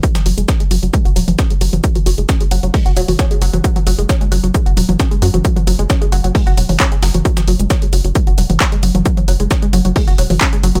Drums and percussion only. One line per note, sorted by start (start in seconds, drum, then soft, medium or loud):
0.03 kick loud
0.03 closed hi-hat medium
0.03 shaker medium
0.15 snare loud
0.15 closed hi-hat medium
0.15 mid tom medium
0.15 shaker medium
0.26 open hi-hat loud
0.38 closed hi-hat medium
0.38 shaker medium
0.48 kick loud
0.48 snare loud
0.48 closed hi-hat medium
0.48 shaker medium
0.60 closed hi-hat medium
0.71 open hi-hat loud
0.71 shaker medium
0.83 closed hi-hat medium
0.93 kick loud
0.93 closed hi-hat medium
0.93 shaker medium
1.05 closed hi-hat medium
1.16 open hi-hat loud
1.16 shaker medium
1.28 closed hi-hat medium
1.28 mid tom medium
1.39 kick loud
1.39 snare loud
1.39 closed hi-hat medium
1.39 shaker medium
1.50 closed hi-hat medium
1.61 open hi-hat loud
1.61 shaker medium
1.73 closed hi-hat medium
1.73 mid tom medium
1.84 kick loud
1.84 closed hi-hat medium
1.84 shaker medium
1.95 closed hi-hat medium
1.95 mid tom medium
2.06 open hi-hat loud
2.06 shaker medium
2.18 closed hi-hat medium
2.29 kick loud
2.29 snare loud
2.29 closed hi-hat medium
2.29 shaker medium
2.40 closed hi-hat medium
2.51 open hi-hat loud
2.51 shaker medium
2.63 closed hi-hat medium
2.74 kick loud
2.74 closed hi-hat medium
2.74 open hi-hat medium
2.86 closed hi-hat medium
2.96 open hi-hat loud
2.96 shaker medium
3.08 open hi-hat medium
3.08 mid tom medium
3.19 kick loud
3.19 snare loud
3.19 closed hi-hat medium
3.19 shaker medium
3.31 closed hi-hat medium
3.42 open hi-hat loud
3.42 shaker medium
3.53 closed hi-hat medium
3.53 mid tom medium
3.64 kick loud
3.64 closed hi-hat medium
3.64 shaker medium
3.76 closed hi-hat medium
3.76 mid tom medium
3.87 open hi-hat loud
3.87 shaker medium
3.99 closed hi-hat medium
4.09 kick loud
4.09 snare loud
4.09 closed hi-hat medium
4.09 shaker medium
4.21 closed hi-hat medium
4.32 open hi-hat loud
4.32 shaker medium
4.44 closed hi-hat medium
4.54 kick loud
4.54 closed hi-hat medium
4.54 shaker medium
4.66 closed hi-hat medium
4.77 open hi-hat loud
4.77 shaker medium
4.89 closed hi-hat medium
4.89 mid tom loud
5.00 kick loud
5.00 snare loud
5.00 closed hi-hat medium
5.00 shaker medium
5.11 closed hi-hat medium
5.22 open hi-hat loud
5.22 shaker medium
5.34 closed hi-hat medium
5.34 mid tom medium
5.45 kick loud
5.45 closed hi-hat medium
5.45 shaker medium
5.56 closed hi-hat medium
5.56 mid tom medium
5.67 open hi-hat loud
5.67 shaker medium
5.79 closed hi-hat medium
5.90 kick loud
5.90 snare loud
5.90 closed hi-hat medium
5.90 shaker medium
6.02 closed hi-hat medium
6.12 open hi-hat loud
6.12 shaker medium
6.24 closed hi-hat soft
6.35 kick loud
6.35 closed hi-hat medium
6.35 open hi-hat medium
6.47 closed hi-hat medium
6.57 open hi-hat loud
6.57 shaker medium
6.69 open hi-hat medium
6.69 mid tom loud
6.80 kick loud
6.80 snare loud
6.80 clap loud
6.80 closed hi-hat medium
6.80 shaker medium
6.92 closed hi-hat soft
7.03 snare loud
7.03 open hi-hat loud
7.03 shaker medium
7.14 closed hi-hat medium
7.14 mid tom loud
7.25 kick loud
7.25 closed hi-hat medium
7.25 shaker medium
7.37 snare loud
7.37 closed hi-hat medium
7.37 mid tom medium
7.37 shaker medium
7.48 open hi-hat loud
7.59 closed hi-hat medium
7.59 shaker medium
7.70 kick loud
7.70 snare loud
7.70 closed hi-hat medium
7.70 shaker medium
7.82 closed hi-hat medium
7.93 open hi-hat loud
7.93 shaker medium
8.04 closed hi-hat medium
8.15 kick loud
8.15 closed hi-hat medium
8.15 shaker medium
8.27 closed hi-hat soft
8.38 open hi-hat loud
8.38 shaker medium
8.50 closed hi-hat medium
8.50 mid tom loud
8.60 kick loud
8.60 snare loud
8.60 clap loud
8.60 closed hi-hat medium
8.60 shaker medium
8.72 closed hi-hat soft
8.83 open hi-hat loud
8.83 shaker medium
8.95 closed hi-hat medium
8.95 mid tom loud
9.05 kick loud
9.05 closed hi-hat medium
9.05 shaker medium
9.17 closed hi-hat medium
9.17 mid tom medium
9.28 open hi-hat loud
9.28 shaker medium
9.40 closed hi-hat medium
9.51 kick loud
9.51 snare loud
9.51 closed hi-hat medium
9.51 shaker medium
9.62 closed hi-hat medium
9.73 open hi-hat loud
9.73 shaker medium
9.85 closed hi-hat medium
9.96 kick loud
9.96 closed hi-hat medium
9.96 open hi-hat medium
10.08 closed hi-hat medium
10.18 open hi-hat loud
10.18 shaker medium
10.30 open hi-hat medium
10.30 mid tom loud
10.41 kick loud
10.41 snare loud
10.41 clap loud
10.41 closed hi-hat medium
10.41 shaker medium
10.53 closed hi-hat medium
10.63 open hi-hat loud
10.63 shaker medium
10.75 closed hi-hat medium
10.75 mid tom medium